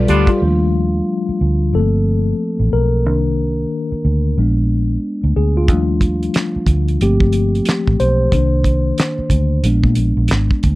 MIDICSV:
0, 0, Header, 1, 7, 480
1, 0, Start_track
1, 0, Tempo, 659341
1, 299, Time_signature, 4, 2, 24, 8
1, 7828, End_track
2, 0, Start_track
2, 0, Title_t, "Horn section"
2, 0, Program_c, 0, 61
2, 62, Note_on_c, 0, 59, 69
2, 62, Note_on_c, 0, 62, 76
2, 62, Note_on_c, 0, 65, 80
2, 214, Note_off_c, 0, 59, 0
2, 214, Note_off_c, 0, 62, 0
2, 214, Note_off_c, 0, 65, 0
2, 7828, End_track
3, 0, Start_track
3, 0, Title_t, "String machine"
3, 0, Program_c, 1, 50
3, 0, Note_on_c, 1, 53, 78
3, 0, Note_on_c, 1, 59, 68
3, 0, Note_on_c, 1, 67, 86
3, 281, Note_off_c, 1, 59, 0
3, 282, Note_off_c, 1, 67, 0
3, 284, Note_off_c, 1, 53, 0
3, 7828, End_track
4, 0, Start_track
4, 0, Title_t, "Tine electric piano"
4, 0, Program_c, 2, 4
4, 0, Control_c, 2, 64, 127
4, 0, Note_on_c, 2, 55, 84
4, 0, Note_on_c, 2, 65, 77
4, 0, Note_on_c, 2, 69, 77
4, 0, Note_on_c, 2, 74, 94
4, 61, Note_on_c, 2, 67, 79
4, 127, Note_off_c, 2, 67, 0
4, 147, Note_off_c, 2, 55, 0
4, 154, Note_off_c, 2, 65, 0
4, 159, Note_off_c, 2, 69, 0
4, 165, Note_off_c, 2, 74, 0
4, 215, Note_on_c, 2, 65, 82
4, 307, Control_c, 2, 64, 0
4, 309, Note_on_c, 2, 53, 39
4, 316, Note_on_c, 2, 55, 38
4, 317, Note_on_c, 2, 57, 38
4, 323, Note_on_c, 2, 62, 44
4, 417, Control_c, 2, 64, 127
4, 644, Note_off_c, 2, 53, 0
4, 647, Note_off_c, 2, 55, 0
4, 647, Note_off_c, 2, 57, 0
4, 651, Note_off_c, 2, 62, 0
4, 1266, Note_on_c, 2, 53, 43
4, 1268, Control_c, 2, 64, 0
4, 1269, Note_on_c, 2, 58, 39
4, 1271, Note_on_c, 2, 57, 40
4, 1272, Note_on_c, 2, 60, 45
4, 1273, Note_on_c, 2, 69, 75
4, 1295, Note_off_c, 2, 65, 0
4, 1397, Control_c, 2, 64, 127
4, 1602, Note_off_c, 2, 53, 0
4, 1604, Note_off_c, 2, 57, 0
4, 1604, Note_off_c, 2, 58, 0
4, 1605, Note_off_c, 2, 60, 0
4, 1957, Note_off_c, 2, 69, 0
4, 1987, Note_on_c, 2, 70, 77
4, 2221, Note_on_c, 2, 51, 42
4, 2225, Note_on_c, 2, 58, 40
4, 2229, Control_c, 2, 64, 0
4, 2230, Note_on_c, 2, 62, 46
4, 2365, Control_c, 2, 64, 127
4, 2560, Note_off_c, 2, 51, 0
4, 2562, Note_off_c, 2, 58, 0
4, 2564, Note_off_c, 2, 62, 0
4, 2914, Note_off_c, 2, 70, 0
4, 3190, Control_c, 2, 64, 0
4, 3192, Note_on_c, 2, 56, 44
4, 3195, Note_on_c, 2, 59, 38
4, 3201, Note_on_c, 2, 62, 46
4, 3336, Control_c, 2, 64, 127
4, 3876, Note_off_c, 2, 56, 0
4, 3878, Note_off_c, 2, 59, 0
4, 3881, Note_off_c, 2, 62, 0
4, 3905, Note_on_c, 2, 68, 69
4, 4053, Note_off_c, 2, 68, 0
4, 4056, Note_on_c, 2, 65, 69
4, 4147, Control_c, 2, 64, 0
4, 4151, Note_on_c, 2, 53, 41
4, 4154, Note_on_c, 2, 55, 37
4, 4157, Note_on_c, 2, 57, 41
4, 4160, Note_on_c, 2, 62, 49
4, 4265, Control_c, 2, 64, 127
4, 4484, Note_off_c, 2, 53, 0
4, 4486, Note_off_c, 2, 55, 0
4, 4488, Note_off_c, 2, 57, 0
4, 4489, Note_off_c, 2, 62, 0
4, 5076, Note_off_c, 2, 65, 0
4, 5109, Control_c, 2, 64, 0
4, 5111, Note_on_c, 2, 53, 44
4, 5112, Note_on_c, 2, 57, 41
4, 5114, Note_on_c, 2, 58, 40
4, 5114, Note_on_c, 2, 67, 75
4, 5120, Note_on_c, 2, 60, 53
4, 5223, Control_c, 2, 64, 127
4, 5796, Note_off_c, 2, 53, 0
4, 5797, Note_off_c, 2, 57, 0
4, 5798, Note_off_c, 2, 58, 0
4, 5801, Note_off_c, 2, 60, 0
4, 5823, Note_on_c, 2, 72, 82
4, 5848, Note_off_c, 2, 67, 0
4, 6064, Note_on_c, 2, 51, 42
4, 6068, Note_on_c, 2, 58, 38
4, 6069, Control_c, 2, 64, 0
4, 6072, Note_on_c, 2, 62, 51
4, 6178, Control_c, 2, 64, 127
4, 6401, Note_off_c, 2, 51, 0
4, 6403, Note_off_c, 2, 58, 0
4, 6405, Note_off_c, 2, 62, 0
4, 6752, Note_off_c, 2, 72, 0
4, 7024, Note_on_c, 2, 56, 44
4, 7027, Note_on_c, 2, 59, 42
4, 7030, Control_c, 2, 64, 0
4, 7033, Note_on_c, 2, 62, 52
4, 7134, Control_c, 2, 64, 127
4, 7712, Note_off_c, 2, 56, 0
4, 7714, Note_off_c, 2, 59, 0
4, 7717, Note_off_c, 2, 62, 0
4, 7828, End_track
5, 0, Start_track
5, 0, Title_t, "Fingered electric bass"
5, 0, Program_c, 3, 33
5, 65, Note_on_c, 3, 38, 88
5, 193, Note_off_c, 3, 38, 0
5, 304, Note_on_c, 3, 39, 78
5, 730, Note_off_c, 3, 39, 0
5, 1027, Note_on_c, 3, 38, 68
5, 1262, Note_on_c, 3, 31, 71
5, 1273, Note_off_c, 3, 38, 0
5, 1689, Note_off_c, 3, 31, 0
5, 1890, Note_on_c, 3, 33, 72
5, 1972, Note_off_c, 3, 33, 0
5, 1987, Note_on_c, 3, 35, 63
5, 2228, Note_off_c, 3, 35, 0
5, 2228, Note_on_c, 3, 36, 75
5, 2652, Note_off_c, 3, 36, 0
5, 2946, Note_on_c, 3, 38, 63
5, 3157, Note_off_c, 3, 38, 0
5, 3186, Note_on_c, 3, 34, 78
5, 3611, Note_off_c, 3, 34, 0
5, 3812, Note_on_c, 3, 38, 71
5, 3893, Note_off_c, 3, 38, 0
5, 3905, Note_on_c, 3, 38, 79
5, 4140, Note_off_c, 3, 38, 0
5, 4140, Note_on_c, 3, 39, 87
5, 4568, Note_off_c, 3, 39, 0
5, 4854, Note_on_c, 3, 38, 74
5, 5070, Note_off_c, 3, 38, 0
5, 5104, Note_on_c, 3, 31, 75
5, 5530, Note_off_c, 3, 31, 0
5, 5737, Note_on_c, 3, 33, 71
5, 5815, Note_off_c, 3, 33, 0
5, 5826, Note_on_c, 3, 35, 68
5, 6037, Note_off_c, 3, 35, 0
5, 6061, Note_on_c, 3, 36, 83
5, 6488, Note_off_c, 3, 36, 0
5, 6774, Note_on_c, 3, 38, 74
5, 6990, Note_off_c, 3, 38, 0
5, 7013, Note_on_c, 3, 34, 81
5, 7146, Note_off_c, 3, 34, 0
5, 7162, Note_on_c, 3, 46, 83
5, 7247, Note_off_c, 3, 46, 0
5, 7255, Note_on_c, 3, 34, 70
5, 7387, Note_off_c, 3, 34, 0
5, 7402, Note_on_c, 3, 34, 72
5, 7487, Note_off_c, 3, 34, 0
5, 7497, Note_on_c, 3, 32, 68
5, 7628, Note_off_c, 3, 32, 0
5, 7746, Note_on_c, 3, 38, 80
5, 7828, Note_off_c, 3, 38, 0
5, 7828, End_track
6, 0, Start_track
6, 0, Title_t, "Muted fingered electric bass strokes"
6, 938, Note_on_c, 9, 29, 37
6, 1011, Note_off_c, 9, 29, 0
6, 2854, Note_on_c, 9, 29, 40
6, 2927, Note_off_c, 9, 29, 0
6, 4776, Note_on_c, 9, 29, 39
6, 4849, Note_off_c, 9, 29, 0
6, 6687, Note_on_c, 9, 29, 40
6, 6760, Note_off_c, 9, 29, 0
6, 7828, End_track
7, 0, Start_track
7, 0, Title_t, "Drums"
7, 60, Note_on_c, 9, 42, 57
7, 133, Note_off_c, 9, 42, 0
7, 198, Note_on_c, 9, 36, 88
7, 199, Note_on_c, 9, 42, 35
7, 271, Note_off_c, 9, 36, 0
7, 272, Note_off_c, 9, 42, 0
7, 4138, Note_on_c, 9, 36, 89
7, 4138, Note_on_c, 9, 42, 57
7, 4210, Note_off_c, 9, 36, 0
7, 4211, Note_off_c, 9, 42, 0
7, 4374, Note_on_c, 9, 36, 72
7, 4379, Note_on_c, 9, 42, 54
7, 4447, Note_off_c, 9, 36, 0
7, 4452, Note_off_c, 9, 42, 0
7, 4532, Note_on_c, 9, 42, 27
7, 4605, Note_off_c, 9, 42, 0
7, 4616, Note_on_c, 9, 42, 69
7, 4629, Note_on_c, 9, 38, 83
7, 4635, Note_on_c, 9, 39, 67
7, 4689, Note_off_c, 9, 42, 0
7, 4702, Note_off_c, 9, 38, 0
7, 4708, Note_off_c, 9, 39, 0
7, 4852, Note_on_c, 9, 36, 73
7, 4858, Note_on_c, 9, 42, 58
7, 4925, Note_off_c, 9, 36, 0
7, 4931, Note_off_c, 9, 42, 0
7, 5011, Note_on_c, 9, 42, 28
7, 5083, Note_off_c, 9, 42, 0
7, 5103, Note_on_c, 9, 42, 64
7, 5176, Note_off_c, 9, 42, 0
7, 5245, Note_on_c, 9, 36, 78
7, 5317, Note_off_c, 9, 36, 0
7, 5332, Note_on_c, 9, 42, 58
7, 5405, Note_off_c, 9, 42, 0
7, 5497, Note_on_c, 9, 42, 28
7, 5569, Note_off_c, 9, 42, 0
7, 5572, Note_on_c, 9, 42, 64
7, 5596, Note_on_c, 9, 38, 82
7, 5602, Note_on_c, 9, 39, 65
7, 5645, Note_off_c, 9, 42, 0
7, 5669, Note_off_c, 9, 38, 0
7, 5674, Note_off_c, 9, 39, 0
7, 5733, Note_on_c, 9, 36, 69
7, 5806, Note_off_c, 9, 36, 0
7, 5822, Note_on_c, 9, 42, 47
7, 5895, Note_off_c, 9, 42, 0
7, 6058, Note_on_c, 9, 36, 88
7, 6061, Note_on_c, 9, 42, 60
7, 6130, Note_off_c, 9, 36, 0
7, 6133, Note_off_c, 9, 42, 0
7, 6293, Note_on_c, 9, 36, 70
7, 6299, Note_on_c, 9, 42, 55
7, 6366, Note_off_c, 9, 36, 0
7, 6371, Note_off_c, 9, 42, 0
7, 6536, Note_on_c, 9, 42, 73
7, 6550, Note_on_c, 9, 38, 89
7, 6555, Note_on_c, 9, 39, 69
7, 6609, Note_off_c, 9, 42, 0
7, 6622, Note_off_c, 9, 38, 0
7, 6628, Note_off_c, 9, 39, 0
7, 6769, Note_on_c, 9, 36, 72
7, 6775, Note_on_c, 9, 42, 60
7, 6842, Note_off_c, 9, 36, 0
7, 6848, Note_off_c, 9, 42, 0
7, 7016, Note_on_c, 9, 42, 66
7, 7088, Note_off_c, 9, 42, 0
7, 7160, Note_on_c, 9, 36, 77
7, 7233, Note_off_c, 9, 36, 0
7, 7246, Note_on_c, 9, 42, 58
7, 7319, Note_off_c, 9, 42, 0
7, 7483, Note_on_c, 9, 42, 63
7, 7507, Note_on_c, 9, 38, 83
7, 7513, Note_on_c, 9, 39, 72
7, 7556, Note_off_c, 9, 42, 0
7, 7580, Note_off_c, 9, 38, 0
7, 7586, Note_off_c, 9, 39, 0
7, 7649, Note_on_c, 9, 36, 75
7, 7722, Note_off_c, 9, 36, 0
7, 7738, Note_on_c, 9, 42, 49
7, 7744, Note_on_c, 9, 36, 76
7, 7810, Note_off_c, 9, 42, 0
7, 7817, Note_off_c, 9, 36, 0
7, 7828, End_track
0, 0, End_of_file